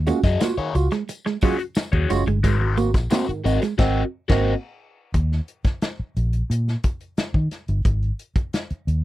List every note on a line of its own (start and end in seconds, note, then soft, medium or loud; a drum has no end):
0.00 0.10 D#2 loud
0.06 0.20 G#3 medium
0.06 0.18 A#3 medium
0.06 0.20 C#4 medium
0.06 0.20 F4 medium
0.06 0.20 F#4 medium
0.06 muted overdriven electric guitar stroke soft
0.06 closed hi-hat medium
0.06 tambourine medium
0.23 0.36 F#2 medium
0.23 0.40 F#4 soft
0.23 0.39 G#4 medium
0.23 0.39 D#5 medium
0.23 kick loud
0.23 snare soft
0.23 closed hi-hat medium
0.23 tambourine soft
0.40 0.51 A#3 medium
0.40 0.54 F4 medium
0.40 0.54 F#4 medium
0.40 muted overdriven electric guitar stroke soft
0.40 snare loud
0.40 closed hi-hat medium
0.40 tambourine medium
0.58 0.71 D#3 medium
0.58 0.73 F#4 medium
0.58 0.74 G#4 medium
0.58 0.74 C#5 loud
0.58 muted fingered electric bass stroke medium
0.58 closed hi-hat soft
0.74 0.87 C#2 medium
0.74 0.88 F4 medium
0.74 0.88 F#4 medium
0.74 muted overdriven electric guitar stroke soft
0.74 muted clean electric guitar stroke soft
0.74 closed hi-hat medium
0.74 tambourine medium
0.91 1.02 G#3 medium
0.91 muted overdriven electric guitar stroke soft
0.91 snare soft
0.91 closed hi-hat medium
1.09 muted clean electric guitar stroke soft
1.09 closed hi-hat medium
1.09 tambourine medium
1.26 1.36 G#3 medium
1.26 muted overdriven electric guitar stroke soft
1.26 snare soft
1.41 1.53 F#3 medium
1.41 1.55 G#3 medium
1.41 1.55 C#4 medium
1.41 1.55 F4 medium
1.41 1.61 F#4 medium
1.41 1.56 F#4 medium
1.41 1.60 G#4 medium
1.41 1.59 C#5 medium
1.41 kick loud
1.41 open hi-hat medium
1.41 tambourine medium
1.59 muted overdriven electric guitar stroke soft
1.59 closed hi-hat medium
1.75 muted overdriven electric guitar stroke soft
1.75 muted clean electric guitar stroke soft
1.75 snare loud
1.75 closed hi-hat medium
1.75 tambourine medium
1.92 2.05 D#2 medium
1.92 2.09 F#4 medium
1.92 2.09 G#4 medium
1.92 2.10 C#5 medium
1.92 kick medium
2.10 2.22 F#1 loud
2.10 2.23 G#3 medium
2.10 2.21 G#3 medium
2.10 2.23 C#4 medium
2.10 2.23 F4 medium
2.10 2.23 F#4 loud
2.10 muted overdriven electric guitar stroke soft
2.10 snare soft
2.10 closed hi-hat medium
2.10 tambourine medium
2.27 2.44 G1 medium
2.27 2.38 G#3 medium
2.27 muted overdriven electric guitar stroke soft
2.27 closed hi-hat soft
2.44 2.94 G#1 loud
2.44 2.57 G#2 medium
2.44 2.57 D#3 medium
2.44 2.55 G#3 medium
2.44 2.75 F#4 medium
2.44 2.75 A#4 loud
2.44 2.75 C5 loud
2.44 kick loud
2.44 closed hi-hat medium
2.44 tambourine medium
2.60 2.67 C4 soft
2.60 2.67 F#4 soft
2.60 muted clean electric guitar stroke soft
2.77 2.90 A#3 medium
2.77 2.88 A#3 medium
2.77 2.90 C4 medium
2.77 2.90 F#4 medium
2.77 closed hi-hat medium
2.77 tambourine medium
2.94 3.07 A#1 medium
2.94 muted overdriven electric guitar stroke soft
2.94 kick medium
2.94 snare soft
2.94 closed hi-hat medium
2.94 tambourine soft
3.10 3.22 A#3 medium
3.10 3.24 C4 medium
3.10 3.30 F#4 medium
3.10 3.24 F#4 medium
3.10 3.27 A#4 medium
3.10 3.26 C5 medium
3.10 snare loud
3.10 closed hi-hat medium
3.10 tambourine medium
3.27 3.41 G#2 medium
3.27 3.41 D#3 medium
3.27 muted overdriven electric guitar stroke medium
3.27 muted fingered electric bass stroke soft
3.27 closed hi-hat soft
3.44 3.57 G#1 medium
3.44 3.58 C4 medium
3.44 3.59 F#4 medium
3.44 3.58 F#4 medium
3.44 3.60 A#4 medium
3.44 3.60 D#5 medium
3.44 muted clean electric guitar stroke soft
3.44 closed hi-hat medium
3.44 tambourine medium
3.62 3.73 G#3 medium
3.62 muted overdriven electric guitar stroke soft
3.62 snare soft
3.62 closed hi-hat medium
3.62 tambourine soft
3.78 4.02 G#1 medium
3.78 4.02 C4 loud
3.78 4.01 F#4 loud
3.78 4.02 F#4 medium
3.78 4.02 A#4 loud
3.78 4.02 D#5 loud
3.78 kick loud
3.78 snare loud
3.78 crash medium
4.28 4.53 G#1 loud
4.28 4.53 A#3 loud
4.28 4.53 C4 loud
4.28 4.52 F#4 loud
4.28 4.53 F#4 loud
4.28 4.52 A#4 medium
4.28 4.53 D#5 medium
4.28 kick loud
4.28 snare loud
4.28 crash medium
5.14 5.39 D#2 medium
5.14 kick medium
5.14 closed hi-hat medium
5.32 snare soft
5.48 closed hi-hat medium
5.64 muted fingered electric bass stroke soft
5.64 kick medium
5.64 snare soft
5.64 closed hi-hat soft
5.82 snare medium
5.82 closed hi-hat medium
5.99 muted fingered electric bass stroke soft
6.16 6.41 A#1 medium
6.16 closed hi-hat medium
6.33 closed hi-hat medium
6.50 6.75 A#2 medium
6.50 closed hi-hat medium
6.68 snare soft
6.83 kick medium
6.83 closed hi-hat medium
7.00 closed hi-hat soft
7.17 snare medium
7.17 closed hi-hat medium
7.34 7.47 D#3 medium
7.34 kick medium
7.51 snare soft
7.51 closed hi-hat medium
7.68 7.81 G1 medium
7.68 closed hi-hat soft
7.85 8.10 G#1 medium
7.85 kick loud
7.85 closed hi-hat medium
8.02 closed hi-hat soft
8.19 closed hi-hat medium
8.36 muted fingered electric bass stroke soft
8.36 kick medium
8.36 closed hi-hat soft
8.53 snare medium
8.53 closed hi-hat medium
8.70 muted fingered electric bass stroke soft
8.70 closed hi-hat soft
8.87 9.04 D#2 medium
8.87 closed hi-hat medium